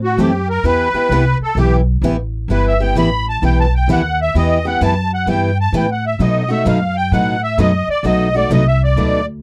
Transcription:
Already playing: upright bass A2
0.04 accordion F#4
0.17 upright bass F#2, steel-string acoustic guitar E3 A3 C4 E4 A4, accordion G4
0.50 accordion A#4
0.63 upright bass E2, steel-string acoustic guitar E3 B3 E4 G4 B4, accordion B4
0.93 steel-string acoustic guitar B3 E4 G4, muted upright bass stroke
1.09 upright bass C2, steel-string acoustic guitar E3 B3 E4 G4 B4
1.40 accordion A4, muted upright bass stroke
1.55 upright bass B1, steel-string acoustic guitar E3 B3 E4 G4 B4, accordion G4
2.02 upright bass A1, steel-string acoustic guitar E3 B3 E4 G4 B4
2.48 upright bass G1, steel-string acoustic guitar E3 B3 E4 G4 B4
2.52 accordion B4
2.67 accordion E5
2.80 steel-string acoustic guitar B3 E4 G4, accordion G5
2.95 upright bass A1, steel-string acoustic guitar E3 B3 E4 G4 B4, accordion B5
3.29 accordion A5
3.42 upright bass B1, steel-string acoustic guitar E3 B3 E4 G4 B4, accordion G5
3.60 accordion A5
3.75 accordion G5
3.88 upright bass D#2, steel-string acoustic guitar E3 B3 E4 G4 B4
3.92 accordion F#5
4.22 accordion E5
4.34 upright bass E2, steel-string acoustic guitar E3 B3 E4 G4 B4, accordion D#5
4.65 steel-string acoustic guitar B3 E4 G4, accordion F#5
4.81 upright bass F#2, steel-string acoustic guitar E3 B3 E4 G4 B4, accordion A5
5.14 accordion F#5
5.26 upright bass G2, steel-string acoustic guitar E3 B3 E4 G4 B4, accordion G5
5.61 accordion A5
5.72 upright bass A2, steel-string acoustic guitar E3 B3 E4 G4 B4
5.77 accordion G5
5.92 accordion F#5
6.06 accordion E5
6.19 steel-string acoustic guitar B2 F#3 A3 D#4 F#4 B4, upright bass B2, accordion D#5
6.48 steel-string acoustic guitar A3 D#4 F#4, accordion E5
6.65 upright bass F#2, steel-string acoustic guitar B2 F#3 A3 D#4 F#4 B4, accordion F5
6.96 accordion G5
7.11 upright bass A2, steel-string acoustic guitar B2 F#3 A3 D#4 F#4 B4, accordion F#5
7.43 accordion E5
7.58 upright bass F#2, steel-string acoustic guitar B2 F#3 A3 D#4 F#4 B4, accordion D#5
7.88 accordion D5, muted upright bass stroke
8.03 upright bass B1, steel-string acoustic guitar B2 F#3 A3 D#4 F#4 B4, accordion D#5
8.35 steel-string acoustic guitar A3 D#4 F#4, accordion D5
8.50 upright bass C2, steel-string acoustic guitar B2 F#3 A3 D#4 F#4 B4, accordion D#5
8.68 accordion E5
8.84 accordion D5
8.96 upright bass D2, steel-string acoustic guitar B2 F#3 A3 D#4 F#4 B4

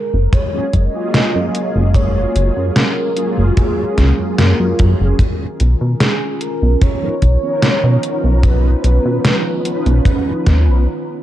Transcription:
Already playing: ambient pad G#3 A#4, soft synth lead A#4
0.14 analog synth bass F#1
0.33 soft synth lead C#5, kick, closed hi-hat
0.53 analog polysynth F#3 A#3 C#4 F4 G#4
0.73 analog synth bass F#1, soft synth lead D#5, kick, closed hi-hat
0.93 analog polysynth F#3 A#3 C#4 F4 G#4
1.14 snare, closed hi-hat
1.35 analog synth bass F#2
1.55 closed hi-hat
1.76 analog synth bass F#1
1.94 analog polysynth F#3 A#3 C#4 F4 G#4, soft synth lead C#5, kick, closed hi-hat
2.36 analog synth bass F#1, closed hi-hat
2.57 analog synth bass F#2
2.76 soft synth lead A#4, snare, closed hi-hat
3.15 analog polysynth F#3 A#3 C#4 F4 G#4, closed hi-hat
3.38 analog synth bass F#1
3.57 soft synth lead G#4, kick, closed hi-hat
3.98 analog synth bass C#2, kick, snare, closed hi-hat
4.19 analog synth bass F#2
4.38 analog synth bass F#2, soft synth lead A#4, snare, closed hi-hat
4.60 analog synth bass F#2
4.79 analog synth bass F#2, kick, closed hi-hat
5.00 analog synth bass F#1
5.19 ambient pad D#3 C#4 F4 A#5, kick, closed hi-hat
5.60 analog synth bass B1, closed hi-hat
5.81 analog synth bass B2
6.00 soft synth lead G#4, snare, closed hi-hat
6.41 soft synth lead A#4, closed hi-hat
6.62 analog synth bass B1
6.81 soft synth lead C#5, kick, closed hi-hat
7.02 analog polysynth F3 B3 C#4 D#4 A#4
7.22 analog synth bass B1, kick, closed hi-hat
7.42 analog polysynth F3 B3 C#4 D#4 A#4
7.62 snare, closed hi-hat
7.84 analog synth bass B2
8.03 closed hi-hat
8.24 analog synth bass B1
8.43 analog polysynth F3 B3 C#4 D#4 B4, soft synth lead B4, kick, closed hi-hat
8.84 analog synth bass B1, closed hi-hat
9.05 analog synth bass B2
9.25 snare, closed hi-hat
9.64 analog polysynth F3 B3 C#4 D#4 B4, closed hi-hat
9.86 analog synth bass B1, closed hi-hat
10.05 kick, closed hi-hat
10.46 analog synth bass D#2, kick, snare, closed hi-hat
10.68 analog synth bass B1

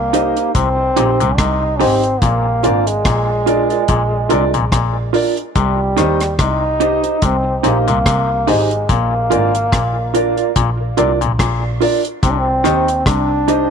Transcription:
Already playing: double bass C2, trombone A#3
0.13 clean electric guitar D#4 G4 C5, upright piano D#4 G4 C5 D#5, closed hi-hat
0.36 clean electric guitar D#4 G4 C5, closed hi-hat
0.55 double bass C2, clav C3, trombone C4, kick, closed hi-hat
0.79 upright piano C5 D#5
0.96 double bass A#1, clav A#2, clean electric guitar D#4 G4 C5, upright piano D#4 G4 C5 D#5, closed hi-hat
1.20 double bass C2, clav C3, closed hi-hat
1.38 double bass C2, clav C3, trombone D#4, kick, cross-stick, closed hi-hat
1.79 double bass G#1, clav G#2, trombone C4, clean electric guitar D#4 G4 C5, upright piano D#4 G4 C5 D#5, open hi-hat
2.03 closed hi-hat
2.21 double bass A#1, clav A#2, trombone A#3, kick, closed hi-hat
2.63 double bass G#1, clav G#2, upright piano D4 F4 A#4 D5, clean electric guitar F4 A#4 D5, closed hi-hat
2.87 trombone G#3, closed hi-hat
3.05 double bass A#1, clav A#2, kick, cross-stick, closed hi-hat
3.46 upright piano D4 F4 A#4 D5, clean electric guitar F4 A#4 D5, closed hi-hat
3.70 clean electric guitar F4 A#4 D5, closed hi-hat
3.88 double bass A#1, clav A#2, kick, closed hi-hat
4.13 upright piano A#4 D5
4.29 double bass C2, clav C3, upright piano D4 F4 A#4 D5, clean electric guitar F4 A#4 D5, closed hi-hat
4.54 double bass A#1, clav A#2, closed hi-hat
4.72 double bass A#1, clav A#2, kick, cross-stick, closed hi-hat
5.13 upright piano D4 F4 A#4 D5, clean electric guitar F4 A#4 D5, open hi-hat
5.36 muted clean electric guitar stroke, closed hi-hat
5.56 double bass C2, clav C3, trombone G3, kick, closed hi-hat
5.96 double bass D#2, clav D#3, clean electric guitar D#4 G4 C5, upright piano D#4 G4 C5 D#5, cross-stick, closed hi-hat
6.20 cross-stick, closed hi-hat
6.39 double bass C2, clav C3, trombone D#4, kick, cross-stick, closed hi-hat
6.80 clean electric guitar D#4 G4 C5, upright piano D#4 G4 C5 D#5, closed hi-hat
7.03 clean electric guitar D#4 G4 C5, closed hi-hat
7.22 double bass C2, clav C3, trombone C4, kick, closed hi-hat
7.46 upright piano C5 D#5
7.59 trombone C4
7.63 double bass A#1, clav A#2, trombone A#3, clean electric guitar D#4 G4 C5, upright piano D#4 G4 C5 D#5, closed hi-hat
7.88 double bass C2, clav C3, closed hi-hat
8.06 double bass C2, clav C3, kick, cross-stick, closed hi-hat
8.47 double bass G#1, clav G#2, trombone G#3, clean electric guitar D#4 G4 C5, upright piano D#4 G4 C5 D#5, open hi-hat
8.71 closed hi-hat
8.89 double bass A#1, clav A#2, trombone A#3, kick, closed hi-hat
9.30 double bass G#1, clav G#2, upright piano D4 F4 A#4 D5, clean electric guitar F4 A#4 D5, closed hi-hat
9.55 closed hi-hat
9.72 double bass A#1, clav A#2, kick, cross-stick, closed hi-hat
10.14 upright piano D4 F4 A#4 D5, clean electric guitar F4 A#4 D5, closed hi-hat
10.37 clean electric guitar F4 A#4 D5, closed hi-hat
10.56 double bass A#1, clav A#2, kick, closed hi-hat
10.80 upright piano A#4 D5
10.97 double bass C2, clav C3, upright piano D4 F4 A#4 D5, clean electric guitar F4 A#4 D5, closed hi-hat
11.21 double bass A#1, clav A#2, closed hi-hat
11.39 double bass A#1, clav A#2, kick, cross-stick, closed hi-hat
11.81 upright piano D4 F4 A#4 D5, clean electric guitar F4 A#4 D5, open hi-hat
12.04 muted clean electric guitar stroke, closed hi-hat
12.23 double bass C2, clav C3, trombone C4, kick, closed hi-hat
12.31 trombone D4
12.39 trombone C4
12.64 double bass D#2, clav D#3, clean electric guitar D#4 G4 C5, upright piano D#4 G4 C5 D#5, cross-stick, closed hi-hat
12.88 closed hi-hat
13.06 double bass C2, clav C3, trombone D4, kick, cross-stick, closed hi-hat
13.48 upright piano D#4 G4 C5 D#5, clean electric guitar D#4 G4 C5, closed hi-hat

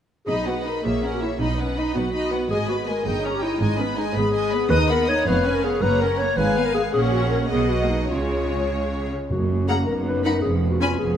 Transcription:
0.26 double bass section B1, cello section B2, viola section D#4, clarinet G#4, violin section D#5 B5
0.46 viola section B3, clarinet F#4, violin section B4 F#5
0.65 viola section D#4, clarinet A#4, violin section D#5 B5
0.84 double bass section A#1, cello section A#2, viola section A#3, clarinet G#4, violin section C#5 E5
1.03 viola section C#4, violin section A#4 F#5
1.13 clarinet F#4
1.21 viola section A#3, clarinet E4, violin section C#5 E5
1.40 double bass section B1, cello section B2, clarinet D#4, viola section D#4, violin section D#5 B5
1.59 viola section B3, clarinet C#4, violin section B4 F#5
1.77 viola section D#4, clarinet D#4, violin section D#5 B5
1.95 double bass section B1, cello section B2, viola section B3, clarinet F#4, violin section B4 F#5
2.13 viola section D#4, violin section D#5 B5
2.31 viola section B3, violin section B4 F#5
2.50 double bass section G#1, cello section G#2, viola section G#3, clarinet G#4, violin section D#5 G#5
2.68 viola section B3, clarinet F#4, violin section B4 B5
2.87 viola section G#3, clarinet A#4, violin section D#5 G#5
3.05 double bass section G1, cello section G2, viola section D#4, clarinet G#4, violin section D#5 G5
3.23 viola section C#4, violin section C#5 A#5
3.34 clarinet G4
3.42 viola section D#4, clarinet E4, violin section D#5 G5
3.60 double bass section G#1, cello section G#2, viola section G#3, clarinet D#4, violin section D#5 G#5
3.78 viola section B3, clarinet C#4, violin section B4 B5
3.96 viola section G#3, clarinet D#4, violin section D#5 G#5
4.14 double bass section G#1, cello section G#2, viola section B3, clarinet G#4, violin section B4 B5
4.33 viola section G#3, violin section D#5 G#5
4.52 viola section B3, violin section B4 B5
4.70 cello section D#2, double bass section D#2, viola section D#4, clarinet B4, violin section D#5 D#6
4.88 viola section B3, clarinet A#4, violin section F#5 B5
5.06 viola section D#4, clarinet C#5, violin section D#5 D#6
5.26 double bass section F1, cello section F2, viola section B3, clarinet B4, violin section C#5 F5
5.45 viola section C#4, violin section B4 G#5
5.55 clarinet A#4
5.63 viola section B3, clarinet G#4, violin section C#5 F5
5.81 double bass section F#1, cello section F#2, viola section A#3, clarinet B4, violin section C#5 A#5
6.01 viola section C#4, clarinet A#4, violin section A#4 F#5
6.18 viola section A#3, clarinet C#5, violin section C#5 A#5
6.37 double bass section G#1, cello section G#2, viola section G#3, clarinet B4, violin section F5 G#5
6.57 viola section B3, violin section F5 G#5
6.66 clarinet A#4
6.74 viola section G#3, clarinet G#4, violin section F5 G#5
6.93 double bass section A#1, cello section A#2, viola section C#4, clarinet G#4, violin section C#5 F#5
7.12 clarinet F#4
7.30 clarinet A#4
7.49 double bass section B1, cello section B2, viola section B3, clarinet G#4, violin section D#5 F#5
7.69 clarinet F#4
7.81 viola section A#3
7.90 clarinet D#4
8.10 double bass section C#2, cello section C#3, viola section G#3, clarinet F4, violin section C#5
9.30 double bass section F#1, timpani F#2, cello section F#2, french horn section A#3 C#4, clarinet F#4
9.68 viola section A#3, clarinet G#4, violin section F#5 A#5
9.86 double bass section F#1, cello section F#2, french horn section B3 D#4, clarinet A#4
10.05 clarinet B4
10.24 viola section D#4, clarinet A#4, violin section F#5 B5
10.42 double bass section F1, cello section F2, french horn section C#4, clarinet G#4
10.70 clarinet F#4
10.80 viola section C#4, clarinet F4, violin section G#5 B5
10.99 double bass section F1, cello section F2, clarinet G#4

